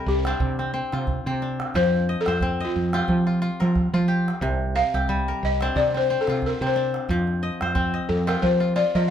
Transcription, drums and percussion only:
0.25 calabash click medium
0.40 calabash thump medium
0.59 calabash click soft
0.93 calabash click soft
1.07 calabash thump medium
1.07 calabash click soft
1.60 calabash click medium
1.74 calabash thump medium
1.74 calabash click soft
2.26 calabash click medium
2.41 calabash thump medium
2.41 calabash click soft
2.93 calabash click medium
3.08 calabash thump medium
3.27 calabash click soft
3.61 calabash click medium
3.76 calabash thump medium
3.76 calabash click soft
4.28 calabash click medium
4.42 calabash thump medium
4.42 calabash click soft
4.95 calabash click medium
5.08 calabash thump medium
5.08 calabash click soft
5.61 calabash click medium
5.75 calabash thump medium
5.94 calabash click soft
6.27 calabash click soft
6.42 calabash thump medium
6.42 calabash click soft
6.94 calabash click medium
7.09 calabash thump medium
7.09 calabash click soft
7.27 calabash click soft
7.61 calabash click medium
7.75 calabash thump medium
8.29 calabash click medium
8.43 calabash thump medium
8.63 calabash click soft
8.78 calabash click soft
8.95 calabash thump soft

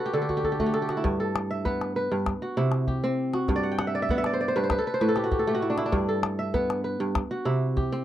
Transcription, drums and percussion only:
0.29 calabash thump soft
0.44 calabash thump soft
0.59 calabash thump soft
0.74 calabash click soft
0.89 calabash click medium
1.05 calabash thump medium
1.05 calabash click soft
1.36 calabash click medium
1.65 calabash thump medium
1.81 calabash click soft
2.26 calabash thump medium
2.26 calabash click medium
2.57 calabash click soft
2.72 calabash click soft
2.87 calabash thump medium
3.33 calabash click soft
3.48 calabash thump medium
3.48 calabash click soft
3.79 calabash click medium
4.09 calabash thump medium
4.24 calabash click soft
4.70 calabash thump medium
4.70 calabash click medium
5.00 calabash click soft
5.16 calabash click soft
5.31 calabash thump medium
5.78 calabash click medium
5.93 calabash thump medium
5.93 calabash click soft
6.23 calabash click medium
6.54 calabash thump medium
6.70 calabash click medium
7.15 calabash thump medium
7.15 calabash click medium
7.46 calabash click soft
7.77 calabash thump medium

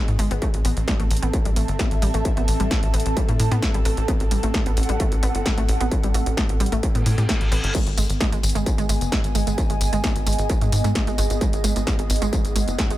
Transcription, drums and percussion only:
0.08 closed hi-hat soft
0.19 open hi-hat loud
0.31 closed hi-hat medium
0.42 kick loud
0.42 closed hi-hat medium
0.54 closed hi-hat medium
0.65 open hi-hat loud
0.77 closed hi-hat medium
0.88 kick loud
0.88 snare loud
0.88 closed hi-hat medium
1.00 closed hi-hat soft
1.11 open hi-hat loud
1.17 closed hi-hat medium
1.23 closed hi-hat medium
1.33 kick loud
1.33 closed hi-hat medium
1.45 closed hi-hat soft
1.56 open hi-hat loud
1.68 closed hi-hat soft
1.79 kick loud
1.79 snare loud
1.79 closed hi-hat medium
1.91 closed hi-hat soft
2.02 open hi-hat loud
2.14 closed hi-hat soft
2.25 kick loud
2.25 closed hi-hat medium
2.37 closed hi-hat soft
2.48 open hi-hat loud
2.60 closed hi-hat soft
2.71 kick loud
2.71 snare loud
2.71 closed hi-hat medium
2.83 closed hi-hat soft
2.94 open hi-hat loud
3.00 closed hi-hat medium
3.06 closed hi-hat medium
3.17 kick loud
3.17 closed hi-hat medium
3.29 closed hi-hat soft
3.40 open hi-hat loud
3.52 snare soft
3.52 closed hi-hat soft
3.62 kick loud
3.62 snare loud
3.62 closed hi-hat medium
3.74 closed hi-hat soft
3.85 open hi-hat loud
3.97 closed hi-hat soft
4.08 kick loud
4.08 closed hi-hat medium
4.20 closed hi-hat medium
4.31 open hi-hat loud
4.43 closed hi-hat medium
4.54 kick loud
4.54 snare loud
4.54 closed hi-hat medium
4.66 closed hi-hat medium
4.77 open hi-hat loud
4.83 closed hi-hat medium
4.89 closed hi-hat medium
5.00 kick loud
5.00 closed hi-hat medium
5.12 closed hi-hat soft
5.23 open hi-hat loud
5.35 closed hi-hat medium
5.46 kick loud
5.46 snare loud
5.46 closed hi-hat medium
5.58 closed hi-hat soft
5.69 open hi-hat loud
5.81 closed hi-hat medium
5.92 kick loud
5.92 closed hi-hat medium
6.03 closed hi-hat medium
6.14 open hi-hat loud
6.26 closed hi-hat medium
6.37 kick loud
6.37 snare loud
6.37 closed hi-hat medium
6.49 closed hi-hat medium
6.60 open hi-hat loud
6.66 closed hi-hat medium
6.72 closed hi-hat medium
6.83 kick loud
6.83 closed hi-hat medium
6.95 closed hi-hat medium
7.06 open hi-hat loud
7.18 snare soft
7.18 closed hi-hat medium
7.29 kick loud
7.29 snare loud
7.29 closed hi-hat medium
7.41 closed hi-hat medium
7.52 open hi-hat loud
7.64 closed hi-hat medium
7.75 kick loud
7.75 closed hi-hat medium
7.75 crash medium
7.75 tambourine soft
7.87 closed hi-hat medium
7.87 tambourine soft
7.98 open hi-hat loud
7.98 tambourine medium
8.10 closed hi-hat medium
8.10 tambourine soft
8.21 kick loud
8.21 snare loud
8.21 closed hi-hat medium
8.21 tambourine soft
8.32 closed hi-hat medium
8.32 tambourine soft
8.43 open hi-hat loud
8.43 tambourine medium
8.49 closed hi-hat medium
8.55 closed hi-hat medium
8.55 tambourine soft
8.66 kick loud
8.66 closed hi-hat medium
8.66 tambourine soft
8.78 closed hi-hat medium
8.78 tambourine soft
8.89 open hi-hat loud
8.89 tambourine medium
9.01 closed hi-hat medium
9.01 tambourine soft
9.12 kick loud
9.12 snare loud
9.12 closed hi-hat medium
9.12 tambourine soft
9.24 closed hi-hat medium
9.24 tambourine soft
9.35 open hi-hat loud
9.35 tambourine medium
9.47 closed hi-hat medium
9.47 tambourine soft
9.58 kick loud
9.58 closed hi-hat medium
9.58 tambourine soft
9.70 closed hi-hat medium
9.70 tambourine soft
9.81 open hi-hat loud
9.81 tambourine medium
9.93 closed hi-hat medium
9.93 tambourine soft
10.04 kick loud
10.04 snare loud
10.04 closed hi-hat medium
10.04 tambourine soft
10.16 closed hi-hat medium
10.16 tambourine soft
10.27 open hi-hat loud
10.27 tambourine medium
10.33 closed hi-hat medium
10.39 closed hi-hat medium
10.39 tambourine soft
10.49 kick loud
10.49 closed hi-hat medium
10.49 tambourine soft
10.61 closed hi-hat medium
10.61 tambourine soft
10.72 open hi-hat loud
10.72 tambourine medium
10.84 snare soft
10.84 closed hi-hat medium
10.84 tambourine soft
10.95 kick loud
10.95 snare loud
10.95 closed hi-hat medium
10.95 tambourine soft
11.07 closed hi-hat medium
11.07 tambourine soft
11.18 open hi-hat loud
11.18 tambourine medium
11.30 closed hi-hat medium
11.30 tambourine soft
11.41 kick loud
11.41 closed hi-hat medium
11.41 tambourine soft
11.53 closed hi-hat medium
11.53 tambourine soft
11.64 open hi-hat loud
11.64 tambourine medium
11.76 closed hi-hat medium
11.76 tambourine soft
11.87 kick loud
11.87 snare loud
11.87 closed hi-hat medium
11.87 tambourine soft
11.99 closed hi-hat medium
11.99 tambourine soft
12.10 open hi-hat loud
12.10 tambourine medium
12.16 closed hi-hat medium
12.22 closed hi-hat medium
12.22 tambourine soft
12.33 kick loud
12.33 closed hi-hat medium
12.33 tambourine soft
12.45 closed hi-hat medium
12.45 tambourine soft
12.56 open hi-hat loud
12.56 tambourine medium
12.68 closed hi-hat medium
12.68 tambourine soft
12.79 kick loud
12.79 snare loud
12.79 closed hi-hat medium
12.79 tambourine soft
12.90 closed hi-hat medium
12.90 tambourine soft

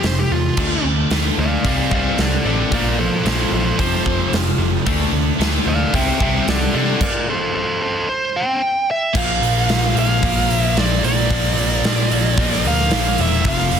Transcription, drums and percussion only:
0.03 snare loud
0.03 open hi-hat medium
0.57 kick loud
0.57 crash medium
1.10 snare loud
1.10 open hi-hat medium
1.64 kick medium
1.64 open hi-hat medium
1.91 kick medium
2.18 snare loud
2.18 open hi-hat medium
2.72 kick loud
2.72 open hi-hat medium
3.26 snare loud
3.26 open hi-hat medium
3.79 kick medium
3.79 open hi-hat medium
4.06 kick medium
4.33 snare loud
4.33 open hi-hat medium
4.87 kick loud
4.87 open hi-hat medium
5.41 snare loud
5.41 open hi-hat medium
5.94 kick medium
5.94 open hi-hat medium
6.20 kick medium
6.48 snare loud
6.48 open hi-hat medium
7.01 kick loud
7.01 crash loud
9.15 kick loud
9.15 crash loud
9.43 open hi-hat medium
9.69 snare loud
9.69 open hi-hat medium
9.97 open hi-hat medium
10.23 kick loud
10.23 open hi-hat medium
10.50 open hi-hat medium
10.77 snare loud
10.77 open hi-hat medium
11.04 open hi-hat medium
11.31 kick loud
11.31 open hi-hat medium
11.58 open hi-hat medium
11.84 snare loud
11.84 open hi-hat medium
12.11 open hi-hat medium
12.37 kick loud
12.37 open hi-hat medium
12.52 snare soft
12.64 open hi-hat medium
12.79 snare soft
12.91 snare loud
12.91 open hi-hat medium
13.18 open hi-hat medium
13.45 kick loud
13.45 open hi-hat medium
13.71 open hi-hat medium

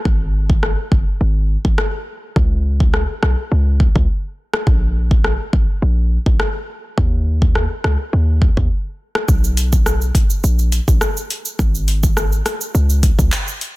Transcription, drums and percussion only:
0.05 kick loud
0.50 kick medium
0.63 cross-stick medium
0.92 kick medium
1.65 kick medium
1.78 cross-stick loud
2.36 kick loud
2.80 kick medium
2.94 cross-stick medium
3.23 cross-stick medium
3.80 kick medium
3.96 kick medium
4.54 cross-stick loud
4.67 kick loud
5.11 kick medium
5.24 cross-stick medium
5.53 kick medium
6.26 kick medium
6.40 cross-stick loud
6.98 kick loud
7.42 kick medium
7.55 cross-stick medium
7.84 cross-stick medium
8.42 kick medium
8.57 kick medium
9.15 cross-stick loud
9.28 kick loud
9.28 shaker medium
9.44 shaker medium
9.57 closed hi-hat medium
9.57 shaker medium
9.73 kick medium
9.73 shaker medium
9.86 cross-stick medium
9.86 shaker medium
10.01 shaker medium
10.15 kick medium
10.15 closed hi-hat medium
10.15 shaker medium
10.30 shaker medium
10.44 shaker medium
10.59 shaker medium
10.72 closed hi-hat medium
10.72 shaker medium
10.88 kick loud
10.88 shaker medium
11.01 cross-stick loud
11.01 shaker medium
11.17 shaker medium
11.30 closed hi-hat medium
11.30 shaker soft
11.45 shaker medium
11.59 kick loud
11.59 shaker medium
11.75 shaker medium
11.88 closed hi-hat medium
11.88 shaker medium
12.03 kick medium
12.03 shaker medium
12.17 cross-stick medium
12.17 shaker medium
12.32 shaker medium
12.46 cross-stick loud
12.46 closed hi-hat medium
12.46 shaker medium
12.61 shaker medium
12.75 shaker medium
12.90 shaker medium
13.03 kick medium
13.03 closed hi-hat medium
13.03 shaker medium
13.19 kick medium
13.19 shaker medium
13.32 clap loud
13.32 shaker medium
13.48 shaker medium
13.61 closed hi-hat medium
13.61 shaker soft

